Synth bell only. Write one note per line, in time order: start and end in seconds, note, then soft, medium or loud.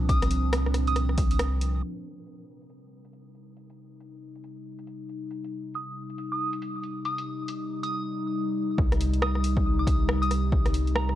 0.09 0.32 D#6 medium
0.88 1.18 D#6 medium
5.75 5.98 D#6 medium
6.32 6.54 D#6 medium
7.05 7.28 D#6 medium
7.83 7.92 D#6 medium
9.22 9.45 D#6 medium
9.79 10.02 D#6 medium
10.22 10.45 D#6 medium
10.96 11.15 A#5 medium